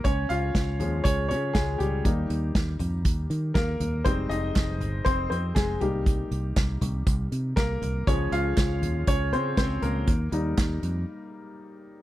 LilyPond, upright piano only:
<<
  \new Staff \with { instrumentName = "Upright piano" } { \time 4/4 \key des \lydian \tempo 4 = 120 <des' des''>8 <f' f''>4. <des' des''>8 <des' des''>8 <aes aes'>8 <g g'>8~ | <g g'>8 r2 r8 <bes bes'>4 | <c' c''>8 <ees' ees''>4. <c' c''>8 <c' c''>8 <aes aes'>8 g'8~ | g'8 r2 r8 <bes bes'>4 |
des''8 <f' f''>4. <des' des''>8 <c' c''>8 <c' c''>8 <bes bes'>8~ | <bes bes'>8 r2. r8 | }
  \new Staff \with { instrumentName = "Upright piano" } { \time 4/4 \key des \lydian r4. <f aes des'>2~ <f aes des'>8 | <g bes ees'>1 | <g aes ees'>8 r2. <g bes ees'>8~ | <g bes ees'>2.~ <g bes ees'>8 r8 |
<f aes des'>1 | r8 <g bes ees'>2.~ <g bes ees'>8 | }
>>